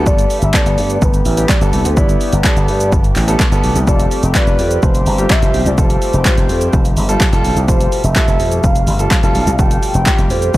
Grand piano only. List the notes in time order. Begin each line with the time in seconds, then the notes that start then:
Already playing: G3 B3 A4
0.54 G3 B3 A4
1.37 G3 B3 G4
1.61 G3 B3 A4
1.97 G3 B3 E4
2.44 G3 B3 A4
3.28 G3 B3 A4
3.51 G3 B3 A4
3.87 G3 F4 A4
4.35 G3 F4 B4
5.18 G3 F4 G4
5.42 G3 F4 C5
5.78 G3 F4 A4
6.25 G3 F4 C5
7.09 G3 F4 A4
7.32 G3 F4 A4
7.68 G3 F4 A4
8.16 G3 F4 A4
8.99 G3 F4 A4
9.23 G3 F4 A4
9.59 G3 F4 A4
10.06 G3 F4 G4